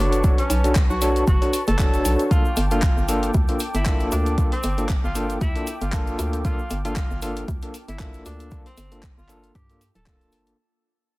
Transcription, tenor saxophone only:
0.00 D4
0.39 C#4
0.90 F#4
1.28 F#4
1.68 A4
2.31 F4
2.71 F4
3.09 F4
3.75 E4
4.12 D4
4.52 C4
5.04 F4
5.41 E4
5.81 F4
6.45 F4
6.85 F4
7.23 F4
7.88 E4
8.26 D4
8.66 C4
9.18 F4
9.55 G4
9.95 A4

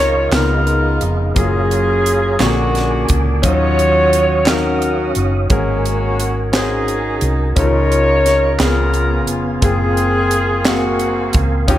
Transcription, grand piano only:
Already playing: C#3 C#4 D#4 F4 A#4
0.32 C#3 B3 D#4 F4 A#4
1.35 F#3 A#3 F4 G#4
2.39 A#2 D3 A#3 F#4 G#4
3.42 D#3 F#3 C#4 D#4 F5
4.45 C#4 D#4 F#4 F5
5.50 G#2 C#4 F#4 G#4 A#4
6.52 C#4 F#4 G#4 C5
7.56 C#3 C#4 D#4 F4 A4
7.65 A#4
8.59 C#3 B3 C#4 F4 G#4
9.61 A#3 C4 F4 G#4
10.65 A#3 C4 G#4 F5
11.68 D#3 C#4 D#4 F4 G4

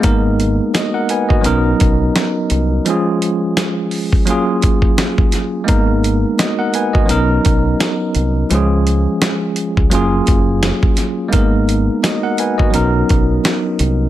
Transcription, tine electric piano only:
0.00 G#3 A#3 B3 D#4
0.04 A#4
0.74 F#4 D#5
0.94 A#4 F#5
1.10 B4 G#5
1.29 F#4 D#5
1.41 F#3 B3 C#4 D#4
1.46 A#4
2.85 F3 G#3 C#4 F4
2.90 G#4
4.25 F#3 A#3 C#4 F4
4.30 G#4
5.64 G#3 A#3 B3 D#4
5.69 A#4
6.39 F#4 D#5
6.59 A#4 F#5
6.75 B4 G#5
6.93 F#4 D#5
7.06 F#3 B3 C#4 D#4
7.11 A#4
8.50 F3 G#3 C#4 F4
8.55 G#4
9.90 F#3 A#3 C#4 F4
9.95 G#4
11.28 G#3 A#3 B3 D#4
11.33 A#4
12.03 F#4 D#5
12.23 A#4 F#5
12.40 B4 G#5
12.58 F#4 D#5
12.70 F#3 B3 C#4 D#4
12.75 A#4

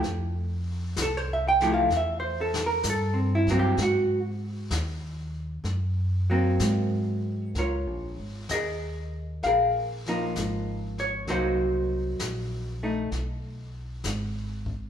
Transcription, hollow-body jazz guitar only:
1.02 A4
1.17 C5
1.33 E5
1.48 G5
1.62 F3 A3 E4 G4
1.74 F5
1.97 E5
2.20 C5
2.41 A4
2.66 A#4
2.90 A4
3.14 C4
3.35 E4
3.50 F#3 A#3 C4
3.59 G4
3.83 F#4
6.30 F#3 A#3 C4
7.58 F4 A#4 C#5
8.51 G#4 A#4 D#5
9.44 G#4 A#4 F5
10.08 F3 A#3 D#4
11.00 C#5
11.28 F#3 A#3 D#4 F#4 C5
12.83 A3 D#4

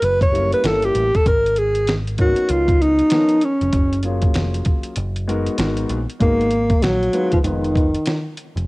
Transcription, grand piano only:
0.32 G3 A#3 C#4 E4 A#4
0.63 G3 A#3 C#4 E4 A#4
2.18 F#3 A#3 C#4 D#4 A#4
2.25 B3
3.11 F3 B3 C#4 D#4 A#4
4.04 F#3 A#3 C#4 F4 G#4
5.28 G#3 B3 D#4 F#4 A#4
5.58 G#3 B3 D#4 F#4 A#4
6.20 G#3 B3 D#4 F#4 A#4
7.13 G#3 B3 D#4 F4 B4
7.43 G#3 B3 D#4 F4 B4

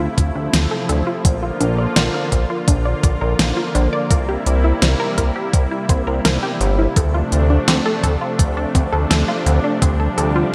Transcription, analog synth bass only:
0.18 D2
0.36 D2
0.54 D2
0.89 D2
1.25 A#1
1.61 A#1
1.97 A#1
2.32 A#1
2.68 A#1
3.03 A#1
3.22 A#1
3.39 A#1
3.75 A#1
4.11 C2
4.46 C2
4.82 C2
5.18 C2
5.53 C2
5.89 C2
6.07 C2
6.25 C2
6.60 G1
6.96 D2
7.32 D2
7.68 D2
8.03 D2
8.39 D2
8.75 D2
8.93 D2
9.11 D2
9.46 D2
9.82 D2
10.18 D2

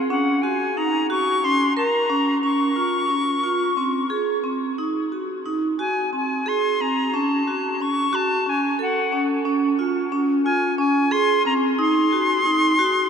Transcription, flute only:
0.10 F#5
0.42 G#5
0.77 A#5
1.11 C#6
1.44 C6
1.77 A#5
2.43 C#6
5.79 G#5
6.16 G#5
6.48 C6
6.81 A#5
7.14 A5
7.82 C#6
8.15 A5
8.49 G#5
8.82 F#5
10.45 G#5
10.78 G#5
11.12 C6
11.46 A#5
11.80 C6

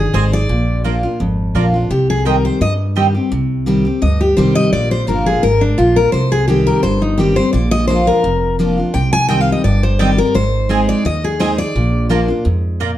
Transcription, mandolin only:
0.14 C4 G#4 D#5 G#5
0.84 A#3 F4 D5 A#5
1.55 A#3 F4 D5 A#5
2.25 C4 G4 D#5 G5
2.96 C4 G4 D#5 G5
9.29 C4 G4 D#5 G5
9.99 C4 G4 D#5 G5
10.70 C4 G#4 D#5 G#5
11.40 C4 G#4 D#5 G#5
12.10 A#3 F4 D5 A#5
12.80 A#3 F4 D5 A#5

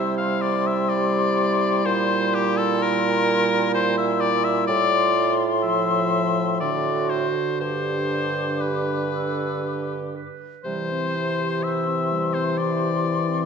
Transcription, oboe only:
Already playing: E5
0.17 F5
0.42 D5
0.67 E5
0.89 D5
1.86 C5
2.34 G4
2.57 A4
2.82 A#4
3.74 C5
3.98 E5
4.20 D5
4.44 E5
4.67 D5
5.63 E5
6.60 D5
7.10 C5
7.60 C5
8.61 B4
10.64 C5
11.63 E5
12.34 C5
12.58 D5

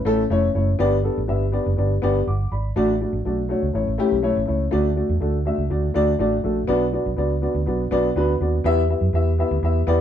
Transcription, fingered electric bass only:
0.05 A1
0.30 F1
0.55 F#1
0.80 G1
1.18 A1
1.29 G1
1.66 F#1
1.78 G1
2.03 G1
2.27 G1
2.52 G#1
2.76 A1
3.13 A1
3.25 B1
3.63 C#2
3.75 A1
3.87 A1
4.12 B1
4.37 A1
4.49 C#2
4.73 D2
5.09 E2
5.21 D2
5.58 C#2
5.70 D2
5.96 D2
6.19 A1
6.44 A#1
6.68 B1
7.06 B1
7.18 C#2
7.55 D2
7.67 B1
7.92 B1
8.16 D2
8.41 D#2
8.64 E2
9.01 F#2
9.13 E2
9.51 D2
9.63 E2
9.87 E2

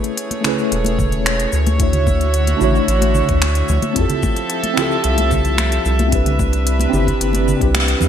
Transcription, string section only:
Already playing: A3 G#4 C#5
1.79 D3 F#4 E5
3.95 F3 G4 A4
6.11 C3 D4 B4

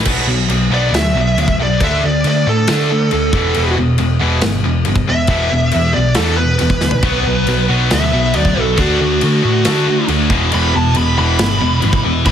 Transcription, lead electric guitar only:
0.74 D5
0.94 E5
1.63 D5
1.85 E5
2.06 D5
2.27 D5
2.49 A4
5.10 E5
5.94 D5
6.15 A4
6.37 B4
7.94 E5
8.36 D5
8.60 A4
8.80 F#4
10.55 B5
10.76 A5
10.97 B5
11.18 B5
12.27 B5

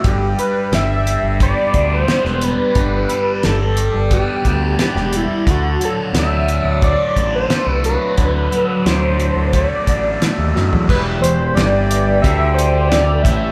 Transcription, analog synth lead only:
0.05 G4
0.39 B4
0.75 E5
1.43 D5
1.94 C5
2.44 B4
3.45 A4
4.13 G4
4.81 G4
5.16 E4
5.51 F#4
5.85 A4
6.19 E5
6.84 D5
7.35 C5
7.69 B4
7.85 B4
8.87 C5
9.56 D5
10.89 B4
11.22 C5
11.55 D5
12.22 E5
12.54 C5
12.89 D5
13.22 E5

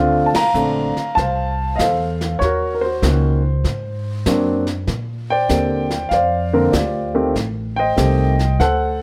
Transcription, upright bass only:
Already playing: D2
0.35 muted upright bass stroke
0.54 A#1
0.96 muted upright bass stroke
1.17 C2
1.79 E2
2.41 D#2
3.02 C#2
3.64 G#2
4.26 F#2
4.87 A#2
5.50 D#2
6.11 F2
6.73 D2
7.35 A1
7.98 C2
8.60 D2

